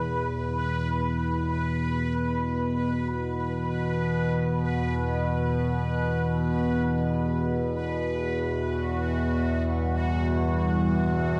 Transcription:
Already playing: E2 B2 B4
8.70 E2 F#4
9.23 G3
9.60 E4
9.73 E5
10.37 C5

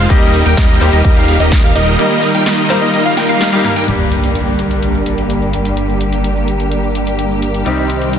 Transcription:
Already playing: G#3 C4 F4 A#4
0.09 D#1 D#3 G3 A#3 D#4 G4 A#4 D#5, kick, closed hi-hat, shaker
0.22 shaker
0.34 open hi-hat, shaker
0.46 D#1 G3 A#3 D#4 A#4 G5, closed hi-hat, shaker
0.57 D#1 G3 A#3 D#4 A#4 D#5, kick, snare, closed hi-hat, shaker
0.69 shaker
0.80 D#1 G3 A#3 D#4 G4 A#4 C5, open hi-hat, shaker
0.93 D#1 G3 A#3 D#4 A#4 D#5, closed hi-hat, shaker
1.05 D#1 G3 A#3 D#4 A#4 D#5, kick, closed hi-hat, shaker
1.16 D#1 G3 A#3 D#4 A#4 F5, shaker
1.28 open hi-hat, shaker
1.40 D#1 G3 A#3 D#4 A#4 D#5, closed hi-hat, shaker
1.52 kick, snare, closed hi-hat, shaker
1.64 D#1 G3 A#3 D#4 A#4 F5, shaker
1.76 D#1 G3 A#3 D#4 A#4 D#5, open hi-hat, shaker
1.87 closed hi-hat, shaker
1.98 G3 A#3 D#4 F4 A#4 D#5, closed hi-hat, shaker
2.11 closed hi-hat, shaker
2.23 open hi-hat, shaker
2.35 G3 A#3 D#4 A#4 G5, closed hi-hat, shaker
2.46 G3 A#3 D#4 A#4 D#5, snare, closed hi-hat, shaker
2.58 closed hi-hat, shaker
2.69 G3 A#3 D#4 A#4 C5, open hi-hat, shaker
2.82 G3 A#3 D#4 A#4 D#5, closed hi-hat, shaker
2.94 G3 A#3 D#4 A#4 D#5, closed hi-hat, shaker
3.05 G3 A#3 D#4 A#4 F5, closed hi-hat, shaker
3.17 G3 A#3 D#4 A#4 G5, snare, open hi-hat, shaker
3.29 G3 A#3 D#4 A#4 F5, closed hi-hat, shaker
3.41 snare, closed hi-hat, shaker
3.52 G3 A#3 D#4 G4 A#4 F5, closed hi-hat, shaker
3.64 G2 G3 A#3 D#4 A#4, open hi-hat, shaker
3.76 G3 A#3 D#4 A#4 G5, closed hi-hat, shaker
3.87 G1 G2 D3 G3 A#3 D4 G4 A#4 D5, closed hi-hat, impact, shaker
4.00 shaker
4.12 closed hi-hat, shaker
4.24 closed hi-hat, shaker
4.35 closed hi-hat, shaker
4.47 shaker
4.59 closed hi-hat, shaker
4.71 closed hi-hat, shaker
4.83 closed hi-hat, shaker
4.95 shaker
5.06 closed hi-hat, shaker
5.18 closed hi-hat, shaker
5.30 closed hi-hat, shaker
5.42 shaker
5.53 closed hi-hat, shaker
5.65 closed hi-hat, shaker
5.77 closed hi-hat, shaker
5.89 shaker
6.01 closed hi-hat, shaker
6.13 closed hi-hat, shaker
6.24 closed hi-hat, shaker
6.36 shaker
6.48 closed hi-hat, shaker
6.60 closed hi-hat, shaker
6.72 closed hi-hat, shaker
6.84 shaker
6.95 closed hi-hat, shaker
7.07 closed hi-hat, shaker
7.19 closed hi-hat, shaker
7.31 shaker
7.42 closed hi-hat, shaker
7.54 closed hi-hat, shaker
7.65 C2 C3 D#3 G3 C4 D#4 G4 C5 D#5, closed hi-hat, shaker
7.78 shaker
7.90 closed hi-hat, shaker
8.02 closed hi-hat, shaker
8.13 closed hi-hat, shaker

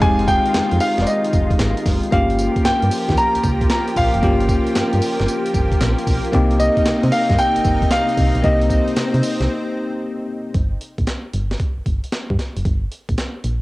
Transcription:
Already playing: D#3 G#3 F4
0.01 F1 G#3 C4 D#4 G4 G#5, kick, closed hi-hat
0.19 closed hi-hat
0.28 G5, kick, closed hi-hat, tambourine
0.46 closed hi-hat
0.54 F2, snare, clap, closed hi-hat, tambourine
0.71 F2, closed hi-hat
0.80 F5, open hi-hat, tambourine
0.98 F1, snare, closed hi-hat
1.02 D5
1.07 D#5, closed hi-hat, tambourine
1.25 closed hi-hat
1.33 F1, kick, closed hi-hat, tambourine
1.51 kick, closed hi-hat
1.59 G#1, snare, clap, closed hi-hat, tambourine
1.77 closed hi-hat
1.86 F#1, kick, snare, open hi-hat, tambourine
2.04 closed hi-hat
2.11 G1 F3 A#3 C#4 F4 G4 F5, kick, closed hi-hat
2.30 closed hi-hat
2.39 closed hi-hat, tambourine
2.56 kick, closed hi-hat
2.65 G2 G5, snare, clap, closed hi-hat, tambourine
2.82 G2, closed hi-hat
2.91 open hi-hat, tambourine
3.09 D#2, kick, snare, closed hi-hat
3.17 A#5, closed hi-hat, tambourine
3.35 C#2, closed hi-hat
3.44 C#2, kick, closed hi-hat, tambourine
3.61 kick, closed hi-hat
3.70 A#5, snare, clap, closed hi-hat, tambourine
3.88 closed hi-hat
3.96 A#1 F5, kick, open hi-hat, tambourine
4.14 F#1, closed hi-hat
4.22 G1 A#3 C#4 F4 G4, kick, closed hi-hat
4.40 closed hi-hat
4.49 kick, closed hi-hat, tambourine
4.67 closed hi-hat
4.75 G2, snare, clap, closed hi-hat, tambourine
4.93 G2, closed hi-hat
5.02 open hi-hat, tambourine
5.20 G1, snare, closed hi-hat
5.28 closed hi-hat, tambourine
5.46 closed hi-hat
5.54 G1, kick, closed hi-hat, tambourine
5.72 kick, closed hi-hat
5.81 A#1, snare, clap, closed hi-hat, tambourine
5.98 closed hi-hat
6.07 B1, kick, open hi-hat, tambourine
6.25 closed hi-hat
6.32 C2 C3 A#3 C4 D#4 G4, kick, closed hi-hat
6.51 closed hi-hat
6.60 D#5, closed hi-hat, tambourine
6.77 kick, closed hi-hat
6.86 C3, snare, clap, closed hi-hat, tambourine
7.03 C3, closed hi-hat
7.12 F5, open hi-hat, tambourine
7.30 G2, kick, snare, closed hi-hat
7.38 G5, closed hi-hat, tambourine
7.56 G1, closed hi-hat
7.65 G1, kick, closed hi-hat, tambourine
7.82 kick, closed hi-hat
7.91 F5, snare, clap, closed hi-hat, tambourine
8.09 closed hi-hat
8.17 C2, kick, open hi-hat, tambourine
8.35 B1, closed hi-hat
8.43 C2 A#3 C4 D#4 G4 D#5, kick, closed hi-hat
8.61 closed hi-hat
8.70 kick, closed hi-hat, tambourine
8.88 closed hi-hat
8.96 C3, snare, clap, closed hi-hat, tambourine
9.14 C3, closed hi-hat
9.23 open hi-hat, tambourine
9.40 C2, snare, closed hi-hat
10.54 G1, kick, closed hi-hat
10.81 closed hi-hat
10.98 A#1, kick, closed hi-hat
11.07 snare, clap, closed hi-hat
11.33 G1, closed hi-hat
11.51 snare, closed hi-hat
11.60 kick, closed hi-hat
11.78 G1
11.86 G1, kick, closed hi-hat
12.04 closed hi-hat
12.12 snare, clap, closed hi-hat
12.30 G2, kick
12.39 snare, closed hi-hat
12.56 F#1, closed hi-hat
12.65 G1, kick, closed hi-hat
12.92 closed hi-hat
13.09 A#1, kick, closed hi-hat
13.18 snare, clap, closed hi-hat
13.44 A#1, closed hi-hat

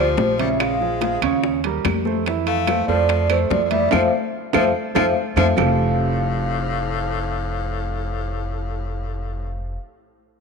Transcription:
Already playing: D2 C5
0.00 F3 F4 G4
0.17 A#1, high bongo, low bongo, high conga, low timbale
0.39 C#3 G3 C#4 C#5 E5, high conga, high timbale
0.60 G#3, high bongo, high conga, high timbale, claves
0.81 F3 F4 G#4, high bongo, high conga
1.01 F3 F4 G#4, high bongo, high conga, high timbale
1.22 D#2 C#3 C#4 C#5, high timbale, claves
1.43 high bongo, high conga
1.64 G3 G4 A#4, high bongo, high conga, high timbale
1.84 F2, high bongo, low bongo, high conga, high timbale, claves
2.05 A3 A4 C5, high bongo, high conga
2.26 E3 E4 E5, high bongo, high timbale
2.47 A3 F5, high conga, high timbale
2.67 A3 A4 C5, high bongo, high conga, high timbale, claves
2.87 F2 F3 A3 A4 C5 D5
3.09 high bongo, high conga, high timbale
3.29 E3 A3 A4 C5, high conga, high timbale, claves
3.50 F2 F3 D5, high bongo, low bongo, high conga, low timbale
3.65 F3 D5
3.70 E3 G3 E4 E5, high conga, high timbale
3.91 F2 F3 F4 A4 C5 E5 F5, low bongo, high conga, high timbale, claves
4.53 F2 F3 F4 A4 C5 E5 F5, low bongo, high conga, high timbale, claves
4.95 F2 F3 F4 A4 C5 E5 F5, low bongo, high conga, high timbale, claves
5.36 F2 F3 F4 A4 C5 E5 F5, low bongo, high conga, high timbale, claves
5.57 F1 A2 F3 C4 F4 G4 A4 F5, low bongo, low conga, low timbale, claves

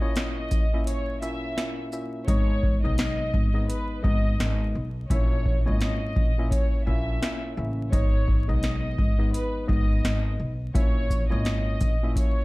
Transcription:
0.00 A#2 A#3 C#4 E4 C#5 D#5
0.16 snare, closed hi-hat
0.51 kick, closed hi-hat, shaker
0.73 A#2 A#3 C#4 E4 E5
0.87 C#5, closed hi-hat
1.21 A#2 A#3 C#4 E4 E5, closed hi-hat, shaker
1.57 A#2 A#3 C#4 E4 E5, snare, closed hi-hat
1.92 A#2 A#3 C#4 E4 E5, shaker
2.27 G#1 G#2 G#3 B3 D#4 C#5 D#5, kick, closed hi-hat
2.63 kick
2.83 B1 G#2 G#3 B3 D#4 D#5
2.98 snare, closed hi-hat
3.34 G#1, kick
3.54 G#2 G#3 B3 D#4 D#5
3.69 B4, closed hi-hat
4.03 G#1 G#2 G#3 B3 D#4 D#5, kick
4.40 G#1, snare, closed hi-hat
4.75 B1
5.09 A#1 A#2 A#3 C#4 E4 C#5 E5, kick, closed hi-hat
5.46 kick
5.65 G#1 A#2 A#3 C#4 E4 C#5 D#5
5.81 snare, closed hi-hat
6.16 A#1, kick
6.38 A#2 A#3 C#4 E4 E5
6.51 C#5, kick, closed hi-hat
6.86 A#1 A#2 A#3 C#4 E4 E5
7.21 A#2 A#3 C#4 E4 E5, snare, closed hi-hat
7.57 A1 C#3 A#3 C#4 E4 E5
7.92 G#1 G#2 G#3 B3 D#4 C#5 D#5, kick, closed hi-hat
8.28 kick
8.48 B1 G#2 G#3 B3 D#4 D#5
8.63 snare, closed hi-hat
8.99 G#1, kick
9.18 G#2 G#3 B3 D#4 D#5
9.33 B4, closed hi-hat
9.67 G#1 G#2 G#3 B3 D#4 D#5, kick
10.04 G#1, snare, closed hi-hat
10.40 B1
10.74 A#1 A#2 A#3 C#4 E4 C#5 E5, kick, closed hi-hat
11.10 kick, shaker
11.30 G#1 A#2 A#3 C#4 E4 C#5 D#5
11.45 snare, closed hi-hat
11.81 A#1, kick, closed hi-hat, shaker
12.03 A#2 A#3 C#4 E4 E5
12.16 C#5, kick, closed hi-hat

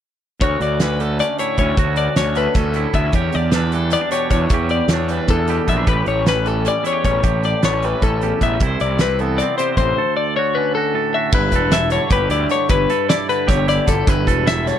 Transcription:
0.41 D2 F#4 C#5, kick, closed hi-hat
0.60 D2 D5, closed hi-hat
0.80 C#4 B4, snare, closed hi-hat
1.00 D3 A3 A4, closed hi-hat
1.19 C#4 D5, closed hi-hat
1.38 A2 E4 C#5, closed hi-hat
1.57 D2 C#4 C#5, kick, closed hi-hat
1.77 D2 F#4, kick, closed hi-hat
1.96 D5, closed hi-hat
2.16 D2 C#4 C#5, snare, closed hi-hat
2.35 D3 A3 B4, closed hi-hat
2.54 D2 C#4 A4, kick, snare, closed hi-hat
2.74 A2 E4, closed hi-hat
2.93 D2 B3 E5, kick, closed hi-hat
3.05 C#4
3.12 E2 G4 C#5, kick, closed hi-hat
3.32 E2 D5, closed hi-hat
3.51 D4 B4, snare, closed hi-hat
3.72 E3 G3 A4, closed hi-hat
3.90 B3 D5, closed hi-hat
4.01 D4
4.11 B2 G4 C#5, closed hi-hat
4.30 E2 D4 C#5, kick, closed hi-hat
4.49 E2, kick, closed hi-hat
4.54 G4
4.69 D5, closed hi-hat
4.88 E2 C#5, snare, closed hi-hat
4.93 D4
5.08 E3 G3 B4, closed hi-hat
5.28 E2 D4 A4, kick, closed hi-hat
5.47 B2 G4, closed hi-hat
5.68 A#1 B3 E5, kick, closed hi-hat
5.77 D4
5.86 A1 A2 G4 B4, kick, closed hi-hat
6.06 A1 C#5, closed hi-hat
6.26 C#4 B4, snare, closed hi-hat
6.46 E3 G3 A4, closed hi-hat
6.65 C#4 D5, closed hi-hat
6.83 E2 E4 C#5, closed hi-hat
6.93 G4
7.04 A1 C#4 C#5, kick, closed hi-hat
7.23 A1 A2 G4, kick, closed hi-hat
7.43 D5, closed hi-hat
7.63 A1 B3 C#5, snare, closed hi-hat
7.73 C#4
7.83 E3 G3 B4, closed hi-hat
8.02 A1 C#4 A4, kick, closed hi-hat
8.22 E2 G4, closed hi-hat
8.41 A1 B3 E5, kick, closed hi-hat
8.53 C#4
8.60 C2 C3 E4 C5, kick, closed hi-hat
8.80 C2 D5, closed hi-hat
8.99 C4 B4, snare, closed hi-hat
9.19 E3 B3 A4, closed hi-hat
9.38 C4 D5, closed hi-hat
9.58 C3 G4 C5, closed hi-hat
9.77 A1 C4 C5, kick, closed hi-hat
9.97 D2 A4
10.17 D5
10.36 F#4 C#5
10.55 D3 C#4 B4
10.75 F#4 A4
10.94 A2 A4
11.14 F#4 E5
11.32 G1 G2 E4 B4, kick, crash
11.52 E1 A4, kick, closed hi-hat
11.71 E4 E5, snare, closed hi-hat
11.90 D3 C#5, closed hi-hat
12.10 G1 G4 B4, kick, closed hi-hat
12.30 D2 E4 D5, closed hi-hat
12.49 D3 C#5, closed hi-hat
12.69 G1 G2 E4 B4, kick, closed hi-hat
12.90 A4, closed hi-hat
13.09 E4 D5, snare, closed hi-hat
13.29 D3 B4, closed hi-hat
13.47 G1 G4 C#5, kick, snare, closed hi-hat
13.68 E4 D5, snare, closed hi-hat
13.86 G1 D3 A4, kick, closed hi-hat
14.07 G1 G2 E4 B4, kick, closed hi-hat
14.27 E1 A4, kick, closed hi-hat
14.46 E4 E5, snare, closed hi-hat
14.66 D3 C#5, snare, closed hi-hat

